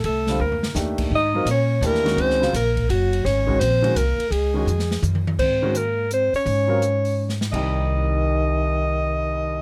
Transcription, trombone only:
0.05 0.38 A3 medium
0.40 0.73 A#3 medium
1.14 1.46 D#4 medium
1.50 1.86 C#4 medium
1.85 2.20 A#3 medium
2.19 2.53 C4 medium
2.54 2.87 A#3 medium
2.90 3.26 F#3 medium
3.25 3.62 C#4 medium
3.61 3.98 C4 medium
3.96 4.32 A#3 medium
4.31 5.02 G#3 medium
5.40 5.77 C4 medium
5.76 6.11 A#3 medium
6.12 6.32 C4 medium
6.35 7.37 C#4 medium
7.51 9.62 D#3 medium

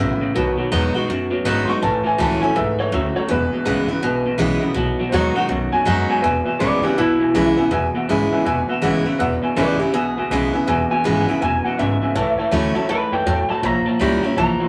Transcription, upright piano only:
0.00 0.35 E4 loud
0.35 0.91 D#3 medium
0.35 0.92 F#3 medium
0.35 0.92 B3 medium
1.64 1.66 C6 medium
1.69 1.82 C#6 loud
1.82 2.09 E3 medium
1.82 2.09 A3 medium
1.82 2.09 C#4 medium
1.82 2.05 A5 loud
2.06 2.19 G#5 medium
2.20 2.42 A5 medium
2.40 2.53 E3 soft
2.40 2.54 A3 medium
2.40 2.54 C#4 medium
2.40 2.55 G#5 medium
2.56 2.78 E5 loud
2.80 2.93 C#5 medium
2.94 3.15 E5 medium
3.16 3.29 C#5 medium
3.29 3.56 E3 medium
3.29 3.56 G#3 medium
3.29 3.57 B3 medium
3.29 4.37 B4 loud
4.03 4.24 E3 medium
4.03 4.24 G#3 medium
4.03 4.24 B3 medium
5.09 5.12 C5 medium
5.14 5.36 C#5 medium
5.35 6.19 D#3 medium
5.35 6.19 F#3 soft
5.35 6.20 B3 medium
5.35 5.72 F#5 loud
5.72 6.08 G#5 loud
6.10 6.22 G#5 loud
6.22 6.36 B4 loud
6.22 6.37 E5 medium
6.22 6.37 G#5 loud
6.44 6.54 B4 medium
6.44 6.54 E5 medium
6.44 6.55 G#5 medium
6.60 6.74 B4 medium
6.60 6.74 E5 medium
6.83 6.91 B4 medium
6.83 6.92 E5 medium
6.83 6.92 G#5 medium
6.97 7.11 B4 loud
6.97 7.11 E5 medium
6.97 7.12 B5 loud
7.20 7.29 B4 medium
7.20 7.29 E5 medium
7.20 7.29 G#5 medium
7.34 7.48 B4 medium
7.34 7.48 E5 medium
7.34 7.48 G#5 loud
7.57 7.65 B4 loud
7.57 7.66 E5 medium
7.57 7.66 G#5 loud
7.71 7.85 B4 loud
7.71 7.85 E5 loud
7.71 7.86 G#5 loud
7.95 8.03 B4 medium
7.95 8.03 E5 medium
7.95 8.03 F#5 loud
8.08 8.22 B4 medium
8.08 8.22 E5 medium
8.08 8.23 G#5 medium
8.31 8.40 B4 medium
8.31 8.40 E5 medium
8.31 8.40 G#5 loud
8.45 8.59 B4 loud
8.45 8.59 E5 loud
8.45 8.59 G#5 loud
8.68 8.76 B4 loud
8.68 8.77 E5 medium
8.68 8.77 F#5 medium
8.82 8.96 B4 loud
8.82 8.96 E5 loud
8.82 8.96 F#5 loud
9.05 9.14 B4 medium
9.05 9.14 E5 medium
9.05 9.14 B5 medium
9.18 9.32 B4 loud
9.18 9.33 E5 loud
9.18 9.33 F#5 loud
9.42 9.50 B4 medium
9.42 9.51 E5 medium
9.42 9.51 G#5 loud
9.56 9.70 B4 medium
9.56 9.70 E5 medium
9.56 9.71 G#5 medium
9.79 9.87 B4 medium
9.79 9.88 E5 medium
9.79 9.88 G#5 medium
9.93 10.07 B4 loud
9.93 10.07 E5 loud
9.93 10.08 G#5 loud
10.16 10.25 B4 medium
10.16 10.25 E5 medium
10.16 10.25 G#5 medium
10.30 10.44 B4 medium
10.30 10.44 E5 medium
10.30 10.44 G#5 medium
10.53 10.61 B4 medium
10.53 10.62 E5 medium
10.53 10.62 G#5 medium
10.67 10.81 B4 loud
10.67 10.81 E5 loud
10.67 10.81 G#5 loud
10.89 10.98 B4 medium
10.89 10.99 E5 medium
10.89 10.99 G#5 medium
11.03 11.18 B4 medium
11.03 11.18 E5 medium
11.03 11.18 G#5 medium
11.26 11.35 B4 medium
11.26 11.35 E5 medium
11.26 11.36 B5 medium
11.40 11.55 B4 medium
11.40 11.55 E5 loud
11.40 11.55 G#5 loud
11.64 11.73 B4 medium
11.64 11.73 E5 medium
11.64 11.73 G#5 medium
11.78 11.92 B4 medium
11.78 11.92 E5 medium
11.78 11.93 G#5 medium
12.02 12.10 B4 medium
12.02 12.10 E5 medium
12.02 12.11 G#5 medium
12.15 12.29 C#5 medium
12.15 12.29 E5 medium
12.15 12.30 A5 loud
12.38 12.46 C#5 medium
12.38 12.47 E5 medium
12.38 12.47 A5 medium
12.51 12.66 C#5 medium
12.51 12.66 E5 medium
12.51 12.66 A5 medium
12.74 12.83 C#5 medium
12.74 12.84 E5 medium
12.74 12.84 A5 loud
12.89 13.03 C#5 loud
12.89 13.03 E5 medium
12.89 13.04 A5 loud
13.12 13.21 C#5 medium
13.12 13.21 E5 medium
13.12 13.22 A5 medium
13.26 13.40 C#5 loud
13.26 13.41 E5 medium
13.26 13.41 A5 loud
13.50 13.58 C#5 medium
13.50 13.58 E5 medium
13.50 13.59 B5 medium
13.64 13.77 C#5 loud
13.64 13.78 E5 loud
13.64 13.78 A#5 loud
13.87 13.95 C#5 medium
13.87 13.96 E5 medium
13.87 13.96 A#5 medium
14.01 14.14 C#5 medium
14.01 14.15 E5 medium
14.01 14.15 C#6 medium
14.24 14.32 C#5 medium
14.24 14.33 E5 medium
14.24 14.33 A#5 medium
14.37 14.51 C#5 loud
14.37 14.51 E5 loud
14.37 14.52 A5 loud
14.60 14.69 C#5 medium
14.60 14.69 E5 medium
14.60 14.69 C6 medium

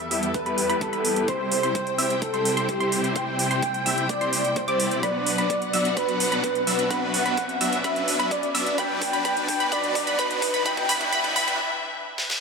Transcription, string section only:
0.00 1.24 E2 medium
0.00 1.24 E3 medium
0.00 1.24 B3 medium
0.00 1.24 G4 medium
0.00 1.26 A4 medium
1.28 4.99 C3 medium
1.28 4.99 G3 medium
1.28 4.99 E4 medium
1.28 5.00 C5 medium
1.28 3.14 G5 medium
3.16 5.01 G5 medium
5.03 8.74 B2 medium
5.03 8.74 F#3 medium
5.03 8.74 D4 medium
5.03 8.74 B4 medium
5.03 6.89 F#5 medium
6.91 8.76 E5 medium
8.78 12.40 G2 medium
8.78 12.40 D4 medium
8.78 12.40 B4 medium
8.78 10.64 D5 medium
10.66 12.40 E5 medium

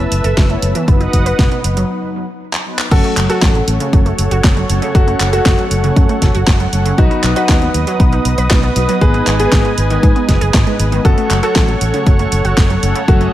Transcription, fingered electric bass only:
0.12 0.21 F#1 medium
0.24 0.33 F#1 medium
0.37 0.55 F#1 loud
0.62 0.72 F#1 loud
0.88 1.06 F#1 medium
1.13 1.32 F#1 medium
1.39 1.48 F#1 medium
1.64 1.83 F#1 medium
2.91 3.00 F#1 loud
3.17 3.26 F#1 medium
3.42 3.60 A1 medium
3.68 3.77 A1 medium
3.93 4.11 F#1 medium
4.18 4.28 F#1 loud
4.31 4.40 F#1 medium
4.44 4.62 F#1 loud
4.69 4.79 F#1 loud
4.95 5.13 F#1 medium
5.20 5.38 F#1 medium
5.46 5.55 F#1 medium
5.71 5.89 F#1 medium
5.96 6.06 F#2 medium
6.22 6.31 F#1 medium
6.35 6.44 F#1 medium
6.47 6.66 F#1 loud
6.73 6.91 F#1 medium
6.98 7.07 B1 loud
7.24 7.33 B1 medium
7.49 7.67 D#2 medium
7.74 7.84 D#2 medium
8.00 8.18 B1 medium
8.25 8.34 B1 loud
8.38 8.47 B1 medium
8.51 8.69 B1 loud
8.76 8.85 B1 loud
9.01 9.20 G#1 medium
9.27 9.45 G#1 medium
9.52 9.61 G#1 medium
9.78 9.96 G#1 medium
10.03 10.12 G#2 medium
10.29 10.38 F#1 medium
10.41 10.51 F#1 loud
10.54 10.63 G#1 medium
10.79 10.98 G#1 loud
11.05 11.14 F#1 loud
11.30 11.40 F#1 loud
11.56 11.74 A1 medium
11.81 11.90 A1 medium
12.07 12.25 F#1 medium
12.32 12.41 F#1 loud
12.45 12.54 F#1 medium
12.57 12.76 F#1 loud
12.83 12.92 F#1 loud
13.08 13.27 F#1 medium

